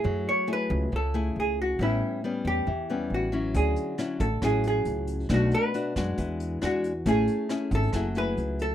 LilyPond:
<<
  \new Staff \with { instrumentName = "Hollow-body jazz guitar" } { \time 4/4 \key a \major \tempo 4 = 137 gis'8 cis''8 b'4 a'4 gis'8 fis'8 | e'4 r8 g'4. fis'4 | gis'4 r8 a'8 gis'8 gis'4. | fis'8 b'2~ b'8 fis'4 |
gis'4. a'4 b'4 a'8 | }
  \new Staff \with { instrumentName = "Nylon-string guitar" } { \time 4/4 \key a \major << { <a e' gis'>4 <a e' gis'>4 r8 <a e' gis'>4. | <g b cis'>4 <g b cis'>4 r8 <g b cis'>4 <fis cis' e'>8~ | <fis cis' e'>4 <fis cis' e'>8 r8 <fis cis' e'>2 | <a d' fis'>4 <a d' fis'>8 <gis d' fis'>4. <gis d' fis'>8 r8 |
<cis' e' gis'>4 <cis' e' gis'>4 <a e' gis'>8 <a e' gis'>4. | } \\ { fis2 cis2 | a,2 e2 | d2 a,2 | b,2 e2 |
a2 fis2 | } >> }
  \new Staff \with { instrumentName = "Upright bass" } { \clef bass \time 4/4 \key a \major fis,8 r4 cis,8 cis,4 cis,4 | a,,8 r4 e,8 e,4 a,,4 | d,8 r4 a,,8 a,,4 cis,4 | b,,8 r4 fis,8 e,4 e,4 |
a,,8 r4 gis,,8 fis,,4 cis,4 | }
  \new DrumStaff \with { instrumentName = "Drums" } \drummode { \time 4/4 r4 r4 r4 r4 | r4 r4 r4 r4 | <hh bd>8 hh8 <hh ss>8 <hh bd>8 <hh bd ss>8 hh8 hh8 hh8 | <hh bd ss>8 hh8 hh8 <hh bd ss>8 <hh bd>8 hh8 <hh ss>8 hh8 |
<hh bd>8 hh8 <hh ss>8 <hh bd>8 <hh bd ss>8 hh8 hh8 hh8 | }
>>